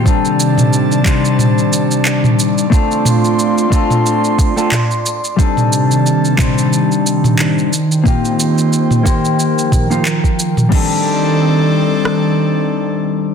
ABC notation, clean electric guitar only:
X:1
M:4/4
L:1/16
Q:"Swing 16ths" 1/4=90
K:Cdor
V:1 name="Clean electric guitar"
[G,CDEA]6 [G,CDEc]8- [G,CDEc]2 | [A,CDFA]6 [A,CDFA]4- [A,CDFA] [A,CDFA] z4 | [G,CDEA]6 [G,CDEc]8 z2 | [B,CEFG]6 [B,EFGc]4- [B,EFGc] [B,EFGc] z4 |
[G,CDEA]16 |]